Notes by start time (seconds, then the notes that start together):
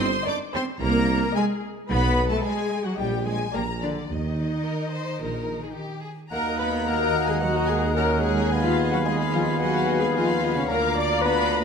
Already playing: G1
0.00 C5 C6
0.25 D4 A#4 D5 D#5 D6
0.52 C4 C5 C6
0.80 C2 A#3 A#4 A#5
1.35 G#3 G#4 D#5 G#5
1.89 B1 B3 B4 B5
2.30 A3 A4 A5
2.44 G#3 G#4 A4 D#5 G#5
2.84 F#3 F#4 F#5
2.97 A#1 G3 G4 D#5 G5
3.25 G#3 G#4 G#5
3.53 A#1 A#3 G4 A#4 D5 A#5
3.81 D3 D4 D5
4.08 D#2 D#3 D#4 D#5
4.64 A#4
4.93 C5
5.19 A#1 A#4
5.63 G#4
5.76 G4
6.03 G#4
6.30 D#2 A#3 F#4 A#4 D#5 F#5 A#5
6.47 D#5 A#5
6.59 B3 A#4 B4 F#5 B5
6.72 D#5 A#5
6.85 A#3 A#4 F#5 A#5
7.00 D#5 A#5
7.14 A#4 F#5
7.27 G#3 G#4 D#5 G#5 A#5
7.40 F#3 D#4 F#4 A#4 F#5
7.55 D#5 A#5
7.66 G#3 G#4 A#4 F#5 G#5
7.83 D#5 A#5
7.96 A#3 C#4 A#4 F#5 A#5
8.10 D#5 A#5
8.22 G#3 G#4 A#4 F#5 G#5
8.38 D#5 A#5
8.51 B3 G#4 D#5 F5 G#5 B5
8.64 F3 F4 F5 B5
8.78 D#5 G#5
8.91 F#3 F#4 F5 F#5 B5
9.05 G#3 G#4 D#5 G#5
9.20 F5 B5
9.32 F3 F4 D#5 F5 G#5
9.46 F5 B5
9.59 F#3 B3 F#4 D#5 F#5 G#5
9.73 F5 B5
9.87 D#5 G#5
9.99 G#3 G#4 F5 G#5 B5
10.13 F3 F4 D#5 F5 G#5
10.28 F5 B5
10.44 D#5 G#5
10.54 C#3 C#4 C#5 F5 B5
10.68 D2 A#3 F4 A#4 D5 A#5
10.83 F5 D6
10.95 D4 D5 A#5
10.99 D6
11.10 F5 D6
11.22 B3 D4 B4 D5 A#5 B5
11.38 F5 D6
11.51 D5 A#5